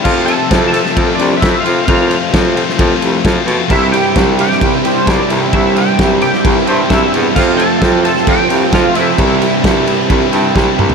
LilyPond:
<<
  \new Staff \with { instrumentName = "Clean electric guitar" } { \time 4/4 \key c \major \tempo 4 = 131 <f' f''>8 <a' a''>4 <a' a''>4 <d' d''>8 <e' e''>8 <f' f''>8 | <f' f''>2 r2 | <e' e''>8 <g' g''>4 <g' g''>4 <c' c''>8 <d' d''>8 r8 | <e' e''>8 <g' g''>4 <g' g''>4 <c' c''>8 <e' e''>8 r8 |
<f' f''>8 <a' a''>4 <a' a''>8 <g' g''>4 <f' f''>8 <e' e''>8~ | <e' e''>2. r4 | }
  \new Staff \with { instrumentName = "Distorted electric guitar" } { \clef bass \time 4/4 \key c \major <f, c f a c' f'>8 <f a c' f'>8 <f, c f a c' f'>8 <f a c' f'>4. <f a c' f'>8 <f a c' f'>8 | <f, c f a c' f'>8 <f a c' f'>8 <f, c f a c' f'>8 <f a c' f'>4. <f a c' f'>8 <f a c' f'>8 | <c, g, c g e'>8 <c g e'>8 <c, g, c g e'>8 <c g e'>4. <g, c g e'>8 <c g e'>8 | <c, g, c g e'>8 <c g e'>8 <c, g, c g e'>8 <c g e'>4. <g, c g e'>8 <c g e'>8 |
<f, c f a c' f'>8 <f a c' f'>8 <f, c f a c' f'>8 <f a c' f'>4. <f a c' f'>8 <f a c' f'>8 | <c, g, c g e'>8 <c g e'>8 <c, g, c g e'>8 <c g e'>4. <g, c g e'>8 <c g e'>8 | }
  \new Staff \with { instrumentName = "Overdriven electric guitar" } { \clef bass \time 4/4 \key c \major r1 | r1 | <c, g, c g e'>8 <c g e'>8 <g, c g e'>4. <c g e'>8 <c, g, c g e'>8 <c g e'>8 | <c, g, c g e'>8 <c g e'>8 <g, c g e'>4. <c g e'>8 <c, g, c g e'>8 <c g e'>8 |
<f, c f a c' f'>8 <f a c' f'>8 <f a c' f'>4. <f a c' f'>8 <f, c f a c' f'>8 <f a c' f'>8 | <c, g, c g e'>8 <c g e'>8 <g, c g e'>4. <c g e'>8 <c, g, c g e'>8 <c g e'>8 | }
  \new Staff \with { instrumentName = "Distorted electric guitar" } { \clef bass \time 4/4 \key c \major <f, c f a c' f'>4. <f, c f a c' f'>2~ <f, c f a c' f'>8 | <f, c f a c' f'>4. <f, c f a c' f'>2~ <f, c f a c' f'>8 | <c, g, c g e'>4. <c, g, c g e'>2~ <c, g, c g e'>8 | <c, g, c g e'>4. <c, g, c g e'>2~ <c, g, c g e'>8 |
<f, c f a c' f'>4. <f, c f a c' f'>2~ <f, c f a c' f'>8 | <c, g, c g e'>4. <c, g, c g e'>2~ <c, g, c g e'>8 | }
  \new Staff \with { instrumentName = "Baritone saxophone" } { \clef bass \time 4/4 \key c \major f,4 f,4 f,8 c,8 f,8 f,8 | f,4 f,4 f,8 c,8 f,8 b,8 | c,4 c,4 c,8 r8 c,8 c,8 | c,4 c,4 c,8 g,8 c,8 e,8 |
f,4 f,4 f,8 c,8 f,8 f,8 | c,4 c,4 c,8 g,8 c,8 c,8 | }
  \new DrumStaff \with { instrumentName = "Drums" } \drummode { \time 4/4 <cymc bd>8 cymr8 <bd cymr sn>8 cymr16 sn16 <bd cymr>8 cymr8 <bd cymr sn>8 cymr8 | <bd cymr>8 cymr8 <bd cymr sn>8 cymr16 sn16 <bd cymr>8 cymr8 <bd cymr sn>8 cymr8 | <cymc bd>8 cymr8 <bd cymr sn>8 cymr16 sn16 <bd cymr>8 cymr8 <bd cymr sn>8 cymr8 | <bd cymr>8 cymr8 <bd cymr sn>8 cymr16 sn16 <bd cymr>8 cymr8 <bd cymr sn>8 cymr8 |
<cymc bd>8 cymr8 <bd cymr sn>8 cymr16 sn16 <bd cymr>8 cymr8 <bd cymr sn>8 cymr8 | <bd cymr>8 cymr8 <bd cymr sn>8 cymr8 <bd cymr>8 cymr8 <bd sn>8 toml16 tomfh16 | }
>>